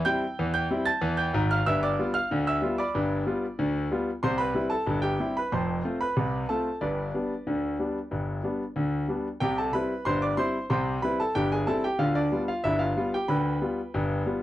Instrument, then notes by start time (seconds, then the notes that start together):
grand piano
0.05 G3 C4 E4 G5 G6
0.39 E2 E3
0.54 G5 G6
0.71 G3 C4 E4
0.86 A5 A6
1.01 E2 E3
1.17 G5 G6
1.34 G#1 G#2
1.51 F5 F6
1.66 G1 G2 E5 E6
1.83 D5 D6
1.99 G3 B3 F4
2.14 F5 F6
2.31 D2 D3
2.47 E5 E6
2.62 G3 B3 F4
2.78 D5 B5 D6
2.95 G1 G2
3.27 G3 B3 F4
3.59 D2 D3
3.91 G3 B3 F4
4.23 C2 C3 C5 C6
4.38 B4 B5
4.55 G3 C4 E4
4.70 A4 A5
4.87 G1 G2
5.02 G4 G5
5.19 G3 C4 E4
5.37 B4 B5
5.52 F1 F2 C5 A5 C6
5.85 A3 C4 F4
6.01 B4 B5
6.17 C2 C3
6.49 A3 C4 F4 A4 A5
6.81 G1 G2 D4 B4 D5
7.14 G3 B3 D4
7.47 D2 D3
7.79 G3 B3 D4
8.11 G1 G2
8.44 G3 B3 D4
8.76 D2 D3
9.08 G3 B3 D4
9.40 C2 C3 G4 G5
9.58 A4 A5
9.73 G3 C4 E4 B4 B5
10.05 G1 G2 C5 C6
10.22 D5 D6
10.37 G3 C4 E4 C5 C6
10.70 C2 C3 C5 G5 C6
11.02 G3 C4 E4 B4 B5
11.20 A4 A5
11.35 G1 G2 G4 G5
11.52 G#4 G#5
11.67 G3 C4 E4 A4 A5
11.84 G4 G5
11.99 D2 D3 F4 F5
12.15 D4 D5
12.32 G3 B3 F4
12.48 F4 F5
12.64 G1 G2 E4 E5
12.79 F4 F5
12.97 G3 B3 F4
13.14 G4 G5
13.28 D2 D3 B4 G5 B5
13.62 G3 B3 F4
13.94 G1 G2
14.26 G3 B3 F4